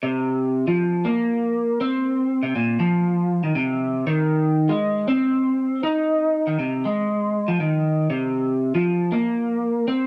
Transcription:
\new Staff \with { instrumentName = "Clean electric guitar" } { \clef bass \time 4/4 \key c \minor \tempo 4 = 119 c4~ c16 f8. bes4. c'8~ | c'8. c16 bes,8 f4~ f16 ees16 c4 | ees4~ ees16 aes8. c'4. ees'8~ | ees'8. ees16 c8 aes4~ aes16 f16 ees4 |
c4~ c16 f8. bes4. c'8 | }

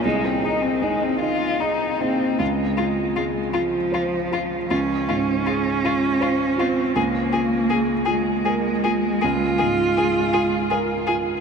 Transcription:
<<
  \new Staff \with { instrumentName = "Upright piano" } { \time 6/8 \key des \lydian \tempo 4. = 53 << { aes'2~ aes'8 r8 | r2. | r2. | r2. |
r2. | } \\ { c,8 <aes' ees''>8 <ees' aes' ees''>8 <ees' aes' ees''>8 <aes' ees''>8 <ees' aes' ees''>8 | des,8 f'8 aes'8 f'8 c''8 f'8 | des,8 aes,8 aes'8 f'8 c''8 f'8 | des,8 f'8 aes'8 f'8 bes'8 f'8 |
des,8 aes,8 aes'8 f'8 bes'8 f'8 | } >> }
  \new Staff \with { instrumentName = "Violin" } { \time 6/8 \key des \lydian aes16 c'16 ees'16 c'16 aes16 c'16 f'8 ees'8 c'8 | f'8 f'8 f'8 f'8 f'8 f'8 | f'8 f'8 f'8 f'8 f'8 f'8 | aes'8 aes'8 aes'8 aes'8 aes'8 aes'8 |
aes'8 aes'8 aes'8 aes'8 aes'8 aes'8 | }
  \new Staff \with { instrumentName = "Cello" } { \time 6/8 \key des \lydian ees'2~ ees'16 r16 bes8 | aes4. f4. | des'2~ des'8 c'8 | bes4. aes4. |
f'2~ f'8 r8 | }
>>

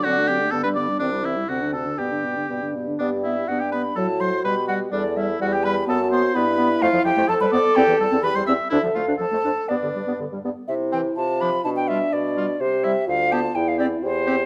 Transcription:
<<
  \new Staff \with { instrumentName = "Flute" } { \time 2/4 \key g \major \tempo 4 = 125 fis''8 g''8 a''16 b''16 d'''8 | d''8 e''8 fis''8 a''8 | g''4. r8 | d''8 e''8 fis''16 g''16 b''8 |
a''8 c'''8 b''8 fis''8 | d''8 e''8 fis''16 g''16 b''8 | a''8 c'''8 b''4 | \key c \major f''8 g''8 a''16 b''16 d'''8 |
g''8 a''8 b''16 c'''16 e'''8 | e''8 f''8 a''4 | d''4 r4 | e''8 g''8 a''8 b''8 |
a''16 g''16 e''8 d''4 | c''8 e''8 f''8 a''8 | g''16 f''16 d''8 c''4 | }
  \new Staff \with { instrumentName = "Oboe" } { \time 2/4 \key g \major fis'8 g'8 a'16 b'16 d''8 | d'8 e'8 fis'8 a'8 | g'4. r8 | d'8 e'8 fis'16 g'16 b'8 |
a'8 c''8 b'8 fis'8 | d'8 e'8 fis'16 g'16 b'8 | a'8 c''8 b'4 | \key c \major f'8 g'8 a'16 b'16 d''8 |
g'8 a'8 b'16 c''16 e''8 | e'8 f'8 a'4 | d'4 r4 | r8 c'8 r8 d'8 |
r8 f'8 r8 f'8 | r8 e'8 r8 g'8 | r8 g'8 r8 g'8 | }
  \new Staff \with { instrumentName = "Clarinet" } { \time 2/4 \key g \major c'16 d'16 c'16 d'16 b16 d'16 b16 d'16 | c'16 e'16 c'16 e'16 c'16 d'16 c'16 d'16 | b16 d'16 b16 d'16 b16 d'16 b16 d'16 | b8 b8 b8 b8 |
fis8 fis8 g8 g8 | g8 g8 g8 g8 | b8 b8 b8 b8 | \key c \major a16 f16 f16 a16 f16 g16 b16 r16 |
c'16 e16 g16 c'16 e16 g16 c'16 r16 | d'16 f16 a16 d'16 f16 a16 d'16 r16 | b16 d16 g16 b16 d16 g16 b16 r16 | r8 e8 r8 f8 |
r8 g8 r8 g8 | r8 g8 r8 b8 | r8 c'8 r8 c'8 | }
  \new Staff \with { instrumentName = "French horn" } { \clef bass \time 2/4 \key g \major fis16 a16 fis16 a16 d16 g16 d16 g16 | e16 g16 e16 g16 c16 d16 c16 d16 | b,16 d16 b,16 d16 b,16 d16 b,16 d16 | g'4 d'4 |
fis'4 g'4 | a'4 g'4 | fis'4 e'4~ | \key c \major e'4 a'4~ |
a'4 g'4 | a'4 a'4 | b'4. r8 | e'4 f'4 |
d'2 | g'4 f'4 | e'4 g'4 | }
  \new Staff \with { instrumentName = "Bassoon" } { \clef bass \time 2/4 \key g \major d4 g,4 | c,4 d,4 | g,4 g,4 | g,4 g,4 |
a,4 b,4 | e,4 e,4 | fis,4 g,4 | \key c \major f,16 f,16 f,16 f,16 f,16 f,16 f,16 r16 |
e,16 e,16 e,16 e,16 e,16 e,16 e,16 r16 | d,16 d,16 d,16 d,16 f,16 f,16 f,16 r16 | g,16 g,16 g,16 g,16 g,16 g,16 g,16 r16 | c8. r16 c8. r16 |
b,8. r16 b,8. r16 | c8. r16 d,8. r16 | e,8. r16 e,8. r16 | }
>>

